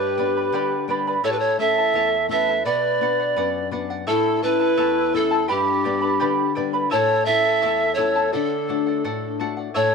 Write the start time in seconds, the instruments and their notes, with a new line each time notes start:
Already playing: nylon-string guitar G2, charango G4 B4 D5 G5 B5, quena G4, pan flute B4
0.18 nylon-string guitar G3 B3 D4, charango B4 D5 G5 B5
0.37 charango B4 D5 B5
0.52 nylon-string guitar D3, charango G4 B4 D5 G5 B5
0.88 nylon-string guitar G3 B3 D4, charango B4 D5 G5 B5
1.07 charango B4 D5 B5
1.23 nylon-string guitar A2, charango E4 A4 C#5 E5 A5, quena A4, pan flute C#5
1.31 quena G4, pan flute B4
1.37 quena A4, pan flute C#5
1.59 nylon-string guitar A3 C#4 E4, charango E4 A4 E5 A5, quena A4, pan flute E5
1.78 charango E4 A4 A5
1.94 nylon-string guitar E2, charango E4 A4 C#5 E5 A5
2.29 nylon-string guitar A3 C#4 E4, charango E4 A4 E5 A5, quena B4, pan flute E5
2.49 charango E4 A4 A5
2.65 nylon-string guitar B2, charango B4 D5 F#5, quena B4, pan flute D5
3.01 nylon-string guitar B3 D4 F#4, charango B4 D5 F#5
3.19 charango D5 F#5
3.36 nylon-string guitar F#2, charango B4 D5 F#5
3.71 nylon-string guitar B3 D4 F#4, charango B4 D5 F#5
3.90 charango D5 F#5
4.07 nylon-string guitar A2, charango E4 A4 C#5 E5 A5, quena E4, pan flute A4
4.42 nylon-string guitar A3 C#4 E4, charango E4 A4 E5 A5, quena E4, pan flute B4
4.59 charango E4 A4 A5
4.77 nylon-string guitar E2, charango E4 A4 C#5 E5 A5
5.13 nylon-string guitar A3 C#4 E4, charango E4 A4 E5 A5, quena E4, pan flute A4
5.31 charango E4 A4 A5
5.48 nylon-string guitar G2, charango G4 B4 D5 G5 B5, pan flute G4
5.52 quena D4
5.84 nylon-string guitar G3 B3 D4, charango B4 D5 G5 B5
6.01 charango B4 D5 B5
6.20 nylon-string guitar D3, charango G4 B4 D5 G5 B5
6.55 nylon-string guitar G3 B3 D4, charango B4 D5 G5 B5
6.73 charango B4 D5 B5
6.90 nylon-string guitar A2, charango E4 A4 C#5 E5 A5, quena A#4, pan flute C#5
6.96 quena A4
7.25 nylon-string guitar A3 C#4 E4, charango E4 A4 E5 A5, quena A4, pan flute E5
7.44 charango E4 A4 A5
7.62 nylon-string guitar E2, charango E4 A4 C#5 E5 A5
7.94 nylon-string guitar A3 C#4, charango E4 A4 E5, quena A4, pan flute C#5
7.99 nylon-string guitar E4, charango A5
8.15 charango E4 A4 A5
8.33 nylon-string guitar D3, quena D4 E4, charango A4 D5 F#5, pan flute A4
8.68 nylon-string guitar A3 D4 F#4, charango A4 D5 F#5
8.86 charango D5 F#5
9.04 nylon-string guitar A2, charango A4 D5 F#5
9.39 nylon-string guitar A3 D4 F#4, charango A4 D5 F#5
9.57 charango D5 F#5
9.74 nylon-string guitar A2, charango E4 A4 C#5 E5 A5, quena A4, pan flute C#5